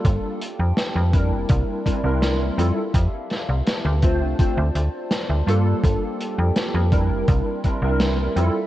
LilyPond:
<<
  \new Staff \with { instrumentName = "Ambient pad" } { \time 4/4 \key g \dorian \tempo 4 = 83 << { a''2 c'''4. a''8~ | a''1~ | a''2 c'''4. a''8 | } \\ { <bes g' g''>2 <d'' e''>4. <g' f''>8~ | <g' f''>4. <f' c'' d''>2~ <f' c'' d''>8 | <bes g' g''>2 <bes' d'' e''>4. <g' f''>8 | } >> }
  \new Staff \with { instrumentName = "Synth keys" } { \time 4/4 \key g \dorian <g bes d' f' a'>8 r4 <g c' d' e' bes'>4 <g c' d' e' bes'>16 <g c' d' e' bes'>8. <g c' e' f' a'>16 r16 | r4. <a c' d' f' c''>8 <a c' d' f' c''>16 r4 r16 <g bes d' f' a'>8~ | <g bes d' f' a'>4. <g c' d' e' bes'>4 <g c' d' e' bes'>16 <g c' d' e' bes'>8. <g c' e' f' a'>16 r16 | }
  \new Staff \with { instrumentName = "FM bass" } { \clef bass \time 4/4 \key g \dorian g,,16 r8 f,16 r16 f,8 f,,16 c,16 r8 c,8. f,16 r16 | f,16 r8 c,16 r16 d,8 c,16 r16 d,16 d,16 r8 d,16 g,16 r16 | g,,16 r8 f,16 r16 f,8 f,,16 c,16 r8 c,8. f,16 r16 | }
  \new DrumStaff \with { instrumentName = "Drums" } \drummode { \time 4/4 <hh bd>8 hh8 <hh sn>8 <hh bd>8 <hh bd>8 <hh bd>8 <hh sn>8 hh8 | <hh bd>8 <hh sn>8 <hh sn>8 <hh bd>8 <hh bd>8 hh8 <hh sn>8 hh8 | <hh bd>8 hh8 <hh sn>8 <hh bd>8 <hh bd>8 <hh bd>8 <hh sn>8 hh8 | }
>>